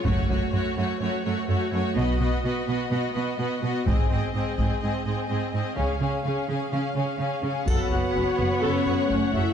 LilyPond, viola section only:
\new Staff \with { instrumentName = "Viola section" } { \time 4/4 \key cis \minor \tempo 4 = 126 << { r1 | r1 | r1 | r1 |
\key fis \minor cis''1 | } \\ { a8 a8 a8 a8 a8 a8 a8 a8 | b8 b8 b8 b8 b8 b8 b8 b8 | bis8 bis8 bis8 bis8 bis8 bis8 bis8 bis8 | cis'8 cis'8 cis'8 cis'8 cis'8 cis'8 cis'8 cis'8 |
a'8 fis'8 cis'8 fis'8 a'8 fis'8 cis'8 fis'8 | } >> }